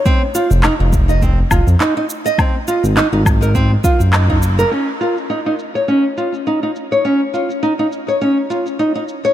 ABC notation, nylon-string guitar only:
X:1
M:4/4
L:1/16
Q:"Swing 16ths" 1/4=103
K:Ebdor
V:1 name="Nylon-string guitar"
C z F z E E z e C z F z E E z e | C z F z E E z B C z F z E E z B | D z F z E E z d D z F z E E z d | D z F z E E z d D z F z E E z d |]